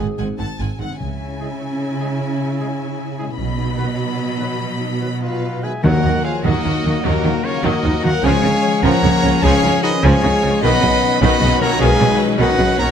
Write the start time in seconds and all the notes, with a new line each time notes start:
Already playing: G#2 C4 F#4 G#4
0.18 G#1 G#2 C4 F#5 G#5
0.39 G#1 G#2 C4 F#5 A5
0.59 G#1 G#2 C4 F#5 G#5
0.79 G#1 G#2 C4 F#5
1.00 C#2 C#3 E4 E5 G#5
1.20 C#4
1.39 C#3 G#3 C#4 E4 G#4
1.60 C#5
1.80 G#4
1.99 C#3 G#3 C#4 E4 G#4
2.20 C#3
2.40 C#4
2.59 C#3 G#3 C#4 E4 G#4
2.79 C#5
2.98 G#4
3.18 C#3 G#3 C#4 E4 G#4
3.37 B1 B2 F#3 D#5 B5
3.58 D#4
3.76 D#3 F#3 B3 F#4 B4
3.98 D#5
4.18 B4
4.37 D#3 F#3 B3 F#4 B4
4.59 B2
4.80 D#4
5.01 D#3 F#3 B3 F#4 B4
5.21 F4 B4 D#5 F5
5.42 B4
5.62 D#3 F#3 G#3 B3 F#4 G#4 B4 E5 G#5
5.83 D#2 D#3 F#3 A#3 F#4 A#4 D#5 F#5
6.03 D#2 D#3 F3 A#3
6.23 F3 F4 G#4 A#4 C#5 F5
6.44 D#2 D#3 F#3 D#4 F#4 A#4 D#5
6.64 D#2 D#3 F3 F#5
6.84 D#2 D#3 F#3 A#4
7.03 D#2 A#2 D#3 F#3 A#3 D#4 F#4 A#4
7.24 D#2 D#3 F3 A#3
7.43 C#3 C#4 F4 A#4 C#5
7.63 D#2 D#3 F#3 D#4 F#4 A#4 D#5
7.84 D#2 D#3 F3 F#5
8.03 D#2 D#3 F#3 F#4 A#4 D#5 F#5
8.22 C#2 C#3 F3 G#3 C#4 G#4 C#5 F5 G#5
8.44 C#2 C#3 D#3 C#4
8.63 F3
8.83 C#2 C#3 F3 A#3 A#4 C#5 F#5 A#5
9.02 C#2 C#3 D#3 C#6
9.22 C#2 C#3 F3 F4
9.41 C#2 C#3 F3 G#3 G#4 C#5 F5 G#5
9.63 C#2 C#3 D#3 C#4
9.83 D#3 D#4 F4 F#4 B4 D#5
10.03 C#2 C#3 F3 G#3 G#4 C#5 F5 G#5
10.23 C#2 C#3 D#3 C#6
10.42 C#2 C#3 F3 F4
10.62 B1 B2 D#3 F#3 B3 C#4 D#4 B4 D#5 F#5 B5
10.82 B1 B2 C#3 F#3
11.02 C#5
11.21 B1 B2 D#3 B3 F#4 B4 D#5 F#5 B5
11.41 B1 B2 C#3 D#5
11.60 B1 B2 D#3 A#3 A#4 C#5 F#5 A#5
11.79 B1 B2 D#3 G#3 G#4 B4 F5 G#5
12.00 B1 B2 C#3 F#3
12.20 C#5
12.39 B1 B2 D#3 F#3 F#4 B4 D#5 F#5
12.58 B1 B2 C#3 D#5
12.77 B1 B2 D#3 A#3 A#4 C#5 F#5 A#5